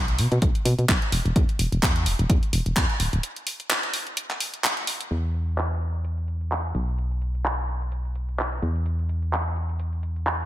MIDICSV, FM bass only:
0, 0, Header, 1, 2, 480
1, 0, Start_track
1, 0, Tempo, 468750
1, 1392, Time_signature, 4, 2, 24, 8
1, 10705, End_track
2, 0, Start_track
2, 0, Title_t, "FM bass"
2, 0, Program_c, 0, 39
2, 0, Note_on_c, 0, 35, 75
2, 190, Note_on_c, 0, 47, 98
2, 205, Note_off_c, 0, 35, 0
2, 278, Note_off_c, 0, 47, 0
2, 324, Note_on_c, 0, 47, 101
2, 394, Note_off_c, 0, 47, 0
2, 431, Note_on_c, 0, 35, 100
2, 518, Note_off_c, 0, 35, 0
2, 669, Note_on_c, 0, 47, 95
2, 757, Note_off_c, 0, 47, 0
2, 804, Note_on_c, 0, 47, 75
2, 874, Note_off_c, 0, 47, 0
2, 911, Note_on_c, 0, 35, 106
2, 998, Note_off_c, 0, 35, 0
2, 1150, Note_on_c, 0, 28, 84
2, 1238, Note_off_c, 0, 28, 0
2, 1284, Note_on_c, 0, 28, 94
2, 1353, Note_off_c, 0, 28, 0
2, 1391, Note_on_c, 0, 40, 96
2, 1478, Note_off_c, 0, 40, 0
2, 1630, Note_on_c, 0, 28, 88
2, 1718, Note_off_c, 0, 28, 0
2, 1764, Note_on_c, 0, 28, 89
2, 1834, Note_off_c, 0, 28, 0
2, 1871, Note_on_c, 0, 40, 76
2, 2111, Note_on_c, 0, 28, 104
2, 2126, Note_off_c, 0, 40, 0
2, 2198, Note_off_c, 0, 28, 0
2, 2245, Note_on_c, 0, 28, 102
2, 2314, Note_off_c, 0, 28, 0
2, 2351, Note_on_c, 0, 40, 102
2, 2438, Note_off_c, 0, 40, 0
2, 2591, Note_on_c, 0, 28, 94
2, 2678, Note_off_c, 0, 28, 0
2, 2725, Note_on_c, 0, 28, 79
2, 2794, Note_off_c, 0, 28, 0
2, 2831, Note_on_c, 0, 40, 107
2, 2918, Note_off_c, 0, 40, 0
2, 3071, Note_on_c, 0, 26, 83
2, 3158, Note_off_c, 0, 26, 0
2, 3206, Note_on_c, 0, 26, 91
2, 3274, Note_off_c, 0, 26, 0
2, 5232, Note_on_c, 0, 40, 84
2, 6890, Note_off_c, 0, 40, 0
2, 6910, Note_on_c, 0, 35, 85
2, 8809, Note_off_c, 0, 35, 0
2, 8831, Note_on_c, 0, 40, 86
2, 10705, Note_off_c, 0, 40, 0
2, 10705, End_track
0, 0, End_of_file